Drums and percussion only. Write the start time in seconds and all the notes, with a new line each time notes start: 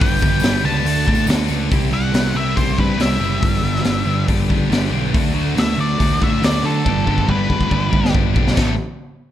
0.01 kick, open hi-hat
0.19 kick, tambourine
0.40 open hi-hat, tambourine
0.44 snare
0.73 tambourine
0.84 open hi-hat, tambourine
0.94 tambourine
1.05 kick, tambourine
1.15 tambourine
1.27 snare, open hi-hat, tambourine
1.48 tambourine
1.58 tambourine
1.71 kick, open hi-hat
2.14 snare, open hi-hat
2.57 kick, open hi-hat
2.79 kick
3.00 snare, open hi-hat
3.43 kick, open hi-hat
3.76 snare
3.85 snare, open hi-hat
4.28 kick, open hi-hat
4.50 kick
4.72 snare, open hi-hat
4.84 snare
5.15 kick, open hi-hat
5.58 snare, open hi-hat
6.00 kick, open hi-hat
6.22 kick
6.44 snare, open hi-hat
6.86 kick
7.07 kick
7.18 kick
7.29 kick
7.50 kick
7.61 kick
7.71 kick
7.93 kick
8.05 snare
8.15 kick
8.36 kick
8.47 snare
8.57 kick, snare, splash